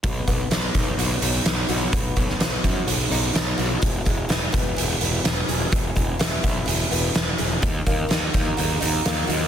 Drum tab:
HH |x-x-x-x-x-x-x-x-|x-x-x-x-x-x-x-x-|x-x-x-x-x-x-x-x-|x-x-x-x-x-x-x-x-|
SD |----o-------o---|---oo-------o---|----o-------o---|----o-------o---|
BD |o-o---o---------|o-o---o---------|o-o---o---------|o-o---o---------|

HH |x-x-x-x-x-x-x-x-|
SD |----o-------o---|
BD |o-o---o---------|